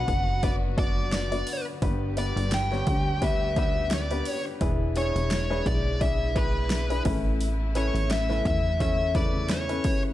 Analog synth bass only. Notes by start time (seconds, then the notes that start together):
0.08 F#1
1.82 G1
2.36 G1
2.87 D2
4.61 E1
5.15 E1
5.66 B1
7.05 A1
7.95 A1
8.45 E2